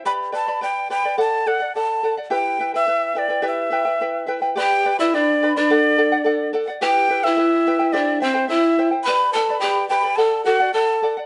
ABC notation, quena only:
X:1
M:2/4
L:1/16
Q:1/4=106
K:G
V:1 name="Quena"
b2 a2 g2 g2 | a2 f2 a3 z | g3 e3 d2 | e6 z2 |
g3 e d3 d- | d6 z2 | g3 e4- e | d2 c2 e3 z |
b2 a2 g2 g2 | a2 f2 a3 z |]